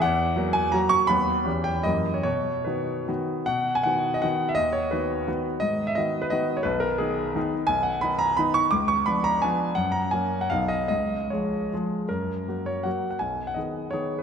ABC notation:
X:1
M:3/4
L:1/16
Q:1/4=167
K:B
V:1 name="Grand piano"
f6 g2 a2 c'2 | b6 =g2 d3 c | c4 B4 z4 | f3 g f3 d f3 e |
d2 c2 B6 z2 | d3 e d3 B d3 c | B2 A2 G6 z2 | [K:F#] g2 f2 b2 a2 b2 c'2 |
=d'2 c'2 b2 a2 g4 | f2 a2 g3 f e2 d2 | d4 c4 z4 | A6 c2 f3 f |
g3 f d4 c3 B |]
V:2 name="Grand piano"
E,,4 [F,A,F]4 [F,A,F]4 | [D,,F,B,F]4 [E,,E,C=G]4 [F,,E,A,G]4 | B,,4 [D,B,F]4 [D,B,F]4 | B,,4 [D,B,F]4 [D,B,F]4 |
D,,4 [D,B,F]4 [D,B,F]4 | G,,4 [D,B,F]4 [D,B,F]4 | B,,,4 [D,B,D]4 [D,B,D]4 | [K:F#] B,,,4 [D,B,D]4 [D,B,D]4 |
C,,4 [E,B,=D]4 [E,B,D]4 | F,,4 [F,A,C]4 [B,,,F,B,D]4 | C,,4 [E,G,G]4 [E,G,G]4 | F,,4 [F,A,F]4 [F,A,F]4 |
B,,,4 [D,B,G]4 [D,B,G]4 |]